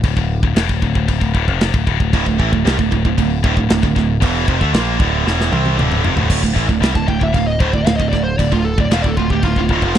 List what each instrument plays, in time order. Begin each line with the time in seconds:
0.03 picked electric bass D1, distorted electric guitar D2 A2, kick, crash
0.17 picked electric bass D1, distorted electric guitar D2 A2, kick
0.43 picked electric bass D1, distorted electric guitar D2 A2, kick
0.56 picked electric bass E1, distorted electric guitar E2 B2, snare, crash
0.69 picked electric bass D1, distorted electric guitar D2 A2, kick
0.82 picked electric bass D1, distorted electric guitar D2 A2, kick
0.95 picked electric bass D1, distorted electric guitar D2 A2, kick
1.08 picked electric bass D1, distorted electric guitar D2 A2, kick, crash
1.20 picked electric bass D1, distorted electric guitar D2 A2, kick
1.34 picked electric bass D1, distorted electric guitar D2 A2, kick
1.47 picked electric bass F1, distorted electric guitar F2 C3 F3, kick
1.61 snare, crash
1.74 picked electric bass D1, distorted electric guitar D2 A2, kick
1.87 picked electric bass D1, distorted electric guitar D2 A2, kick
1.99 picked electric bass D1, distorted electric guitar D2 A2, kick
2.13 picked electric bass D1, distorted electric guitar D2 A2, kick, crash
2.26 picked electric bass D1, distorted electric guitar D2 A2, kick
2.39 picked electric bass A1, distorted electric guitar A2 E3, kick
2.52 picked electric bass D1, distorted electric guitar D2 A2, kick
2.65 picked electric bass C2, distorted electric guitar C3 G3, snare, crash
2.79 picked electric bass D1, distorted electric guitar D2 A2, kick
2.92 picked electric bass D1, distorted electric guitar D2 A2, kick
3.05 picked electric bass D1, distorted electric guitar D2 A2, kick
3.18 picked electric bass D1, distorted electric guitar D2 A2, kick, crash
3.43 picked electric bass D1, distorted electric guitar D2 A2, kick
3.56 picked electric bass D1, distorted electric guitar D2 A2, kick
3.69 picked electric bass D1, distorted electric guitar D2 A2, snare, crash
3.82 picked electric bass D1, distorted electric guitar D2 A2, kick
3.95 picked electric bass D1, distorted electric guitar D2 A2, kick, snare
4.20 picked electric bass E1, distorted electric guitar E2 B2 E3, kick, crash
4.47 picked electric bass F1, distorted electric guitar F2 C3, kick
4.59 picked electric bass D2, distorted electric guitar D3 A3, kick
4.72 picked electric bass A#1, distorted electric guitar A#2 F3 A#3, snare, crash
4.98 picked electric bass D1, distorted electric guitar D2 A2 D3, kick
5.24 picked electric bass E1, distorted electric guitar E2 B2 E3, snare
5.41 snare
5.50 picked electric bass C2, distorted electric guitar C3 G3 C4, high tom
5.65 high tom
5.76 picked electric bass D1, distorted electric guitar D2 A2 D3, mid tom
5.92 mid tom
6.03 picked electric bass F1, distorted electric guitar F2 C3, floor tom
6.16 picked electric bass D1, distorted electric guitar D2 A2, floor tom
6.28 picked electric bass D1, distorted electric guitar D2 A2, kick, crash
6.42 picked electric bass D1, distorted electric guitar D2 A2, kick
6.54 picked electric bass A1, distorted electric guitar A2 E3, kick
6.67 picked electric bass D1, distorted electric guitar D2 A2, kick
6.81 picked electric bass C2, distorted electric guitar C3 G3, snare, crash
6.93 picked electric bass D1, distorted electric guitar D2 A2, lead electric guitar A5, kick
7.06 picked electric bass D1, distorted electric guitar D2 A2, lead electric guitar G5, kick
7.20 picked electric bass D1, distorted electric guitar D2 A2, lead electric guitar E5, kick
7.33 picked electric bass D1, distorted electric guitar D2 A2, lead electric guitar F5, kick, crash
7.37 distorted electric guitar D2 A2
7.47 lead electric guitar D#5
7.59 picked electric bass D1, distorted electric guitar D2 A2, lead electric guitar C5, kick
7.72 picked electric bass D1, distorted electric guitar D2 A2, lead electric guitar D5, kick
7.85 picked electric bass D1, distorted electric guitar D2 A2, lead electric guitar F5, snare, crash
7.96 picked electric bass D1, distorted electric guitar D2 A2, lead electric guitar D#5, kick
8.09 distorted electric guitar D2 A2, lead electric guitar D5, kick
8.13 picked electric bass D1, snare
8.24 lead electric guitar C5
8.38 picked electric bass D1, distorted electric guitar D2 A2, lead electric guitar D5, kick, crash
8.52 picked electric bass D1, distorted electric guitar D2 A2, lead electric guitar F4, kick
8.65 lead electric guitar A4
8.78 picked electric bass D1, distorted electric guitar D2 A2, lead electric guitar D5, kick
8.90 picked electric bass E1, distorted electric guitar E2 B2, lead electric guitar F5, snare, crash
9.02 picked electric bass D1, distorted electric guitar D2 A2, lead electric guitar D5, kick
9.08 lead electric guitar A4
9.17 picked electric bass D1, distorted electric guitar D2 A2, lead electric guitar F4, kick
9.30 picked electric bass D1, distorted electric guitar D2 A2, lead electric guitar G4, kick
9.43 picked electric bass D1, distorted electric guitar D2 A2, lead electric guitar F4, kick, crash
9.56 picked electric bass D1, distorted electric guitar D2 A2, kick
9.69 picked electric bass D1, distorted electric guitar D2 A2, kick
9.82 picked electric bass F1, distorted electric guitar F2 C3 F3, kick
9.95 crash